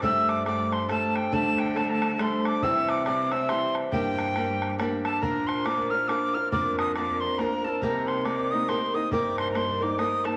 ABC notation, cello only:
X:1
M:3/4
L:1/8
Q:"Swing" 1/4=138
K:Gdor
V:1 name="Cello" clef=bass
G,,6 | D,6 | C,6 | G,,6 |
[K:Bb] B,,6 | F,,6 | C,6 | G,,6 |]